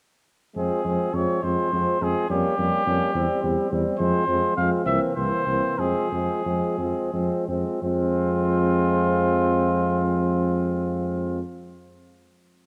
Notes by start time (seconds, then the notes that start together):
0.55 F2 F3 G#3 C4 G#4
0.84 F2 F3 G#3 C4
1.13 F2 F3 G#3 C4 C#5
1.42 F2 F3 G#3 C4 C5
1.70 F2 F3 G#3 C4
2.00 F2 F3 G#3 C4 G#4
2.29 F2 G3 A#3 C#4 G4
2.58 F2 G3 A#3 C#4
2.85 F2 G3 A#3 C#4
3.13 E2 G3 C4
3.42 E2 G3 C4
3.70 E2 G3 C4
3.98 F2 F3 G#3 C4 C5
4.27 F2 F3 G#3 C4
4.55 F2 F3 G#3 C4 F5
4.84 C2 E3 A#3 C4 E5
5.15 C2 E3 A#3 C4 C5
5.44 C2 E3 A#3 C4
5.77 F2 F3 G#3 C4 G#4
6.11 F2 F3 G#3 C4
6.45 F2 F3 G#3 C4
6.78 F2 F3 G#3 C4
7.13 F2 F3 G#3 C4
7.47 F2 F3 G#3 C4
7.82 F2 F3 G#3 C4 F4